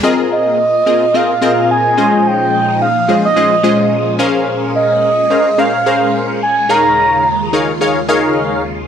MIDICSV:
0, 0, Header, 1, 4, 480
1, 0, Start_track
1, 0, Key_signature, -4, "major"
1, 0, Tempo, 555556
1, 28, Time_signature, 4, 2, 24, 8
1, 7667, End_track
2, 0, Start_track
2, 0, Title_t, "Analog synth lead"
2, 0, Program_c, 0, 81
2, 277, Note_on_c, 0, 75, 102
2, 997, Note_on_c, 0, 77, 109
2, 1010, Note_off_c, 0, 75, 0
2, 1472, Note_off_c, 0, 77, 0
2, 1478, Note_on_c, 0, 80, 106
2, 1959, Note_on_c, 0, 79, 108
2, 1972, Note_off_c, 0, 80, 0
2, 2430, Note_off_c, 0, 79, 0
2, 2435, Note_on_c, 0, 77, 108
2, 2773, Note_off_c, 0, 77, 0
2, 2809, Note_on_c, 0, 75, 84
2, 3600, Note_off_c, 0, 75, 0
2, 4108, Note_on_c, 0, 75, 109
2, 4830, Note_on_c, 0, 77, 125
2, 4843, Note_off_c, 0, 75, 0
2, 5309, Note_off_c, 0, 77, 0
2, 5554, Note_on_c, 0, 80, 102
2, 5791, Note_on_c, 0, 82, 127
2, 5804, Note_off_c, 0, 80, 0
2, 6509, Note_off_c, 0, 82, 0
2, 7667, End_track
3, 0, Start_track
3, 0, Title_t, "Analog polysynth"
3, 0, Program_c, 1, 90
3, 28, Note_on_c, 1, 60, 106
3, 30, Note_on_c, 1, 65, 96
3, 30, Note_on_c, 1, 68, 105
3, 31, Note_on_c, 1, 70, 107
3, 36, Note_on_c, 1, 75, 114
3, 494, Note_off_c, 1, 60, 0
3, 495, Note_off_c, 1, 65, 0
3, 495, Note_off_c, 1, 68, 0
3, 496, Note_off_c, 1, 70, 0
3, 498, Note_off_c, 1, 75, 0
3, 745, Note_on_c, 1, 60, 68
3, 746, Note_on_c, 1, 65, 62
3, 749, Note_on_c, 1, 68, 65
3, 750, Note_on_c, 1, 70, 69
3, 752, Note_on_c, 1, 75, 76
3, 907, Note_off_c, 1, 60, 0
3, 907, Note_off_c, 1, 65, 0
3, 909, Note_off_c, 1, 68, 0
3, 909, Note_off_c, 1, 70, 0
3, 910, Note_off_c, 1, 75, 0
3, 987, Note_on_c, 1, 60, 79
3, 989, Note_on_c, 1, 65, 71
3, 991, Note_on_c, 1, 68, 69
3, 991, Note_on_c, 1, 70, 69
3, 994, Note_on_c, 1, 75, 85
3, 1148, Note_off_c, 1, 60, 0
3, 1149, Note_off_c, 1, 65, 0
3, 1150, Note_off_c, 1, 68, 0
3, 1150, Note_off_c, 1, 70, 0
3, 1151, Note_off_c, 1, 75, 0
3, 1222, Note_on_c, 1, 60, 93
3, 1225, Note_on_c, 1, 65, 78
3, 1225, Note_on_c, 1, 68, 73
3, 1228, Note_on_c, 1, 70, 81
3, 1229, Note_on_c, 1, 75, 100
3, 1691, Note_off_c, 1, 60, 0
3, 1693, Note_off_c, 1, 65, 0
3, 1693, Note_off_c, 1, 68, 0
3, 1695, Note_off_c, 1, 70, 0
3, 1695, Note_off_c, 1, 75, 0
3, 1705, Note_on_c, 1, 56, 80
3, 1706, Note_on_c, 1, 61, 80
3, 1708, Note_on_c, 1, 65, 73
3, 1709, Note_on_c, 1, 68, 71
3, 1711, Note_on_c, 1, 72, 77
3, 1713, Note_on_c, 1, 75, 86
3, 2477, Note_off_c, 1, 56, 0
3, 2478, Note_off_c, 1, 61, 0
3, 2479, Note_off_c, 1, 65, 0
3, 2479, Note_off_c, 1, 68, 0
3, 2480, Note_off_c, 1, 72, 0
3, 2481, Note_off_c, 1, 75, 0
3, 2664, Note_on_c, 1, 56, 70
3, 2665, Note_on_c, 1, 61, 64
3, 2665, Note_on_c, 1, 65, 66
3, 2667, Note_on_c, 1, 68, 64
3, 2669, Note_on_c, 1, 72, 60
3, 2669, Note_on_c, 1, 75, 80
3, 2826, Note_off_c, 1, 56, 0
3, 2827, Note_off_c, 1, 61, 0
3, 2827, Note_off_c, 1, 65, 0
3, 2828, Note_off_c, 1, 68, 0
3, 2829, Note_off_c, 1, 72, 0
3, 2829, Note_off_c, 1, 75, 0
3, 2903, Note_on_c, 1, 56, 77
3, 2904, Note_on_c, 1, 61, 66
3, 2906, Note_on_c, 1, 65, 73
3, 2907, Note_on_c, 1, 68, 68
3, 2907, Note_on_c, 1, 72, 72
3, 2910, Note_on_c, 1, 75, 88
3, 3065, Note_off_c, 1, 56, 0
3, 3066, Note_off_c, 1, 61, 0
3, 3067, Note_off_c, 1, 65, 0
3, 3068, Note_off_c, 1, 68, 0
3, 3068, Note_off_c, 1, 72, 0
3, 3070, Note_off_c, 1, 75, 0
3, 3138, Note_on_c, 1, 56, 88
3, 3141, Note_on_c, 1, 61, 77
3, 3142, Note_on_c, 1, 65, 79
3, 3143, Note_on_c, 1, 68, 78
3, 3145, Note_on_c, 1, 72, 78
3, 3146, Note_on_c, 1, 75, 93
3, 3608, Note_off_c, 1, 61, 0
3, 3610, Note_off_c, 1, 56, 0
3, 3610, Note_off_c, 1, 68, 0
3, 3612, Note_off_c, 1, 65, 0
3, 3613, Note_off_c, 1, 72, 0
3, 3613, Note_off_c, 1, 75, 0
3, 3619, Note_on_c, 1, 61, 100
3, 3621, Note_on_c, 1, 68, 89
3, 3623, Note_on_c, 1, 70, 84
3, 3625, Note_on_c, 1, 72, 88
3, 3626, Note_on_c, 1, 77, 104
3, 4394, Note_off_c, 1, 61, 0
3, 4395, Note_off_c, 1, 68, 0
3, 4396, Note_off_c, 1, 70, 0
3, 4397, Note_off_c, 1, 72, 0
3, 4398, Note_off_c, 1, 77, 0
3, 4582, Note_on_c, 1, 61, 71
3, 4582, Note_on_c, 1, 68, 65
3, 4584, Note_on_c, 1, 70, 65
3, 4586, Note_on_c, 1, 72, 65
3, 4588, Note_on_c, 1, 77, 72
3, 4745, Note_off_c, 1, 61, 0
3, 4745, Note_off_c, 1, 68, 0
3, 4746, Note_off_c, 1, 70, 0
3, 4747, Note_off_c, 1, 72, 0
3, 4748, Note_off_c, 1, 77, 0
3, 4822, Note_on_c, 1, 61, 78
3, 4822, Note_on_c, 1, 68, 66
3, 4825, Note_on_c, 1, 70, 67
3, 4826, Note_on_c, 1, 72, 69
3, 4828, Note_on_c, 1, 77, 86
3, 4985, Note_off_c, 1, 61, 0
3, 4985, Note_off_c, 1, 68, 0
3, 4987, Note_off_c, 1, 70, 0
3, 4987, Note_off_c, 1, 72, 0
3, 4988, Note_off_c, 1, 77, 0
3, 5065, Note_on_c, 1, 61, 85
3, 5065, Note_on_c, 1, 68, 84
3, 5067, Note_on_c, 1, 70, 84
3, 5068, Note_on_c, 1, 72, 84
3, 5071, Note_on_c, 1, 77, 93
3, 5533, Note_off_c, 1, 61, 0
3, 5533, Note_off_c, 1, 68, 0
3, 5534, Note_off_c, 1, 70, 0
3, 5535, Note_off_c, 1, 72, 0
3, 5536, Note_off_c, 1, 77, 0
3, 5782, Note_on_c, 1, 63, 91
3, 5783, Note_on_c, 1, 68, 82
3, 5786, Note_on_c, 1, 70, 79
3, 5788, Note_on_c, 1, 73, 81
3, 5789, Note_on_c, 1, 77, 97
3, 6251, Note_off_c, 1, 63, 0
3, 6252, Note_off_c, 1, 68, 0
3, 6253, Note_off_c, 1, 70, 0
3, 6255, Note_off_c, 1, 73, 0
3, 6255, Note_off_c, 1, 77, 0
3, 6505, Note_on_c, 1, 63, 89
3, 6506, Note_on_c, 1, 68, 77
3, 6510, Note_on_c, 1, 70, 80
3, 6511, Note_on_c, 1, 73, 77
3, 6513, Note_on_c, 1, 77, 96
3, 6667, Note_off_c, 1, 63, 0
3, 6667, Note_off_c, 1, 68, 0
3, 6669, Note_off_c, 1, 70, 0
3, 6670, Note_off_c, 1, 73, 0
3, 6671, Note_off_c, 1, 77, 0
3, 6746, Note_on_c, 1, 63, 91
3, 6748, Note_on_c, 1, 68, 86
3, 6749, Note_on_c, 1, 70, 80
3, 6751, Note_on_c, 1, 73, 83
3, 6753, Note_on_c, 1, 77, 102
3, 6907, Note_off_c, 1, 63, 0
3, 6908, Note_off_c, 1, 68, 0
3, 6909, Note_off_c, 1, 70, 0
3, 6910, Note_off_c, 1, 73, 0
3, 6911, Note_off_c, 1, 77, 0
3, 6986, Note_on_c, 1, 63, 107
3, 6986, Note_on_c, 1, 68, 93
3, 6989, Note_on_c, 1, 70, 96
3, 6990, Note_on_c, 1, 73, 97
3, 6992, Note_on_c, 1, 77, 110
3, 7453, Note_off_c, 1, 63, 0
3, 7454, Note_off_c, 1, 68, 0
3, 7455, Note_off_c, 1, 70, 0
3, 7455, Note_off_c, 1, 73, 0
3, 7457, Note_off_c, 1, 77, 0
3, 7667, End_track
4, 0, Start_track
4, 0, Title_t, "String machine"
4, 0, Program_c, 2, 50
4, 20, Note_on_c, 2, 46, 80
4, 20, Note_on_c, 2, 58, 78
4, 21, Note_on_c, 2, 65, 91
4, 1687, Note_off_c, 2, 58, 0
4, 1688, Note_off_c, 2, 65, 0
4, 1703, Note_on_c, 2, 63, 87
4, 1706, Note_on_c, 2, 53, 71
4, 3606, Note_off_c, 2, 63, 0
4, 3608, Note_off_c, 2, 53, 0
4, 3623, Note_on_c, 2, 56, 70
4, 3623, Note_on_c, 2, 61, 78
4, 5749, Note_off_c, 2, 46, 0
4, 5764, Note_off_c, 2, 61, 0
4, 5783, Note_on_c, 2, 39, 85
4, 5787, Note_on_c, 2, 65, 97
4, 5789, Note_on_c, 2, 49, 76
4, 7667, Note_off_c, 2, 39, 0
4, 7667, Note_off_c, 2, 49, 0
4, 7667, Note_off_c, 2, 56, 0
4, 7667, Note_off_c, 2, 65, 0
4, 7667, End_track
0, 0, End_of_file